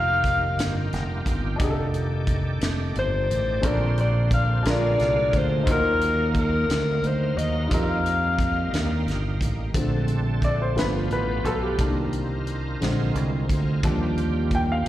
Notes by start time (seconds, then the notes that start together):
Already playing: F1 D#3 A#3 D#4 F4 G4 A#4 F5
0.24 kick, closed hi-hat
0.59 G1, snare, closed hi-hat
0.93 F1, snare, closed hi-hat
1.26 G1, kick, closed hi-hat
1.56 F1 A3 D4 D#4 D5, kick, closed hi-hat
1.61 G4 G#4
1.70 A4
1.94 closed hi-hat
2.27 kick, closed hi-hat
2.61 F1, snare, closed hi-hat
2.95 G1 C5, closed hi-hat
3.30 A1, closed hi-hat
3.61 A#1 A#2 D3 A#3 C4 D4 A4 A#4 C5, kick, closed hi-hat
3.66 D5
3.97 D5, closed hi-hat
4.31 F5, kick, closed hi-hat
4.63 A#1 A#2 G#3 D4 F4 G#4 A#4 F5, closed hi-hat
4.67 D5, snare
4.99 C2, snare, closed hi-hat
5.33 D2 C5, kick, closed hi-hat
5.63 D#2 D#3 D#4 F4, kick, closed hi-hat
5.68 F#3 D#4 F#4 A#4
6.01 closed hi-hat
6.35 kick, closed hi-hat
6.39 A#4
6.70 D2, snare, closed hi-hat
7.04 D2 C5, closed hi-hat
7.37 D#2 D#5, closed hi-hat
7.67 A#3 D#4 F4
7.71 F2 G3 G4 A#4 F5, kick, closed hi-hat
8.06 closed hi-hat
8.39 kick, closed hi-hat
8.73 D#2, snare, closed hi-hat
9.06 G1, snare, closed hi-hat
9.41 A1, kick, closed hi-hat
9.74 A#1 D3 A3 C4 A4, kick, closed hi-hat
10.08 closed hi-hat
10.42 D5, kick, closed hi-hat
10.62 C5
10.75 G1 F3 A3 B3 F4 G4 B4, snare, closed hi-hat
11.10 A1 B4, closed hi-hat
11.44 B1 A4, closed hi-hat
11.63 G4
11.78 C2 D#3 A#3 C4 D4 A#4, kick, closed hi-hat
12.13 closed hi-hat
12.47 closed hi-hat
12.81 A#1 D3 G#3 C4, snare, closed hi-hat
13.15 C2, closed hi-hat
13.49 D2, kick, closed hi-hat
13.83 D#2 F3 G3 A#3 D4 G4, kick, closed hi-hat
14.17 closed hi-hat
14.51 G5, kick, closed hi-hat
14.72 F5